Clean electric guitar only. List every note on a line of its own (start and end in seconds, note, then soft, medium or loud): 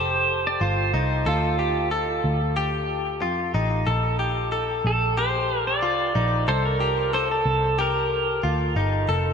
0.00 0.61 G4 medium
0.61 0.93 F4 medium
0.94 1.26 D#4 medium
1.26 1.58 A4 medium
1.59 1.91 G4 medium
1.91 2.56 A4 medium
2.56 3.22 G4 medium
3.22 3.54 F4 medium
3.54 3.87 D#4 medium
3.87 4.19 A4 medium
4.19 4.52 G4 medium
4.52 5.17 A4 medium
5.17 5.83 G4 medium
5.83 6.15 F4 medium
6.15 6.48 D#4 medium
6.48 6.80 A4 medium
6.80 7.13 G4 medium
7.13 7.78 A4 medium
7.79 8.44 G4 medium
8.43 8.76 F4 medium
8.76 9.09 D#4 medium
9.09 9.33 A4 medium